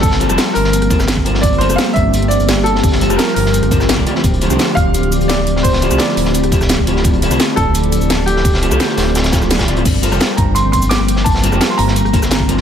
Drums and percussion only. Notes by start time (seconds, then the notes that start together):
0.03 kick, closed hi-hat, open hi-hat, shaker
0.11 snare
0.20 closed hi-hat, shaker
0.30 cross-stick, closed hi-hat, shaker
0.38 snare, closed hi-hat, shaker
0.46 snare
0.55 closed hi-hat, open hi-hat, shaker
0.64 snare
0.73 closed hi-hat, shaker
0.82 cross-stick, closed hi-hat
0.91 kick, closed hi-hat, shaker
0.99 cross-stick, snare, shaker
1.08 snare, closed hi-hat, shaker
1.17 kick, cross-stick
1.25 closed hi-hat
1.34 snare
1.43 kick, closed hi-hat, shaker
1.53 closed hi-hat
1.61 closed hi-hat, shaker
1.69 cross-stick, closed hi-hat, shaker
1.78 snare, closed hi-hat, shaker
1.96 kick, closed hi-hat, shaker
2.14 closed hi-hat, shaker
2.22 closed hi-hat
2.31 closed hi-hat, shaker
2.40 closed hi-hat, shaker
2.49 snare, closed hi-hat, shaker
2.57 cross-stick
2.66 closed hi-hat
2.75 snare
2.83 kick, closed hi-hat, open hi-hat, shaker
2.92 snare
3.01 closed hi-hat, shaker
3.10 cross-stick, closed hi-hat, shaker
3.19 snare, closed hi-hat, shaker
3.27 snare
3.36 closed hi-hat, open hi-hat, shaker
3.46 snare
3.54 closed hi-hat, shaker
3.63 cross-stick, closed hi-hat
3.71 kick, closed hi-hat, shaker
3.80 cross-stick, snare, shaker
3.89 snare, closed hi-hat, shaker
3.98 kick, cross-stick
4.07 closed hi-hat
4.15 snare
4.24 kick, closed hi-hat, shaker
4.34 closed hi-hat
4.41 closed hi-hat, shaker
4.50 cross-stick, closed hi-hat, shaker
4.59 snare, closed hi-hat, shaker
4.77 kick, closed hi-hat, shaker
4.94 closed hi-hat, shaker
5.03 closed hi-hat
5.12 closed hi-hat, shaker
5.21 closed hi-hat, shaker
5.29 snare, closed hi-hat, shaker
5.38 cross-stick
5.47 closed hi-hat
5.56 snare
5.64 kick, closed hi-hat, open hi-hat, shaker
5.73 snare
5.82 closed hi-hat, shaker
5.91 cross-stick, closed hi-hat, shaker
5.98 snare, closed hi-hat, shaker
6.09 snare
6.17 closed hi-hat, open hi-hat, shaker
6.25 snare
6.34 closed hi-hat, shaker
6.43 cross-stick, closed hi-hat
6.52 kick, closed hi-hat, shaker
6.61 cross-stick, snare, shaker
6.69 snare, closed hi-hat, shaker
6.78 kick, cross-stick
6.87 closed hi-hat
6.96 snare
7.04 kick, closed hi-hat, shaker
7.13 closed hi-hat
7.22 closed hi-hat, shaker
7.31 cross-stick, closed hi-hat, shaker
7.40 snare, closed hi-hat, shaker
7.57 kick, closed hi-hat, shaker
7.75 closed hi-hat, shaker
7.84 closed hi-hat
7.92 closed hi-hat, shaker
8.01 closed hi-hat, shaker
8.10 snare, closed hi-hat, shaker
8.19 cross-stick
8.28 closed hi-hat
8.36 snare
8.45 kick, closed hi-hat, open hi-hat, shaker
8.54 snare
8.63 closed hi-hat, shaker
8.71 cross-stick, closed hi-hat, shaker
8.80 snare, closed hi-hat, shaker
8.89 snare
8.97 snare, closed hi-hat, open hi-hat, shaker
9.07 snare
9.15 snare, closed hi-hat, shaker
9.24 cross-stick, snare, closed hi-hat, shaker
9.32 kick, snare, closed hi-hat, shaker
9.41 cross-stick, snare, shaker
9.50 snare, closed hi-hat, shaker
9.59 kick, cross-stick, snare, closed hi-hat
9.67 snare, closed hi-hat
9.77 closed hi-hat
9.85 kick, closed hi-hat, crash, shaker
9.94 closed hi-hat
10.03 closed hi-hat, shaker
10.12 cross-stick, closed hi-hat, shaker
10.20 snare, closed hi-hat, shaker
10.37 kick, closed hi-hat, shaker
10.56 closed hi-hat, shaker
10.73 kick, closed hi-hat, shaker
10.82 closed hi-hat, shaker
10.91 snare, closed hi-hat, shaker
11.00 cross-stick
11.08 closed hi-hat, shaker
11.16 snare
11.26 kick, closed hi-hat, open hi-hat, shaker
11.35 snare
11.44 closed hi-hat, shaker
11.52 cross-stick, shaker
11.61 snare, closed hi-hat, shaker
11.70 snare
11.79 closed hi-hat, open hi-hat, shaker
11.88 snare
11.96 closed hi-hat, shaker
12.05 cross-stick, closed hi-hat
12.14 kick, closed hi-hat, shaker
12.22 cross-stick, snare, shaker
12.31 snare, closed hi-hat, shaker
12.40 kick, cross-stick
12.49 closed hi-hat, shaker
12.57 snare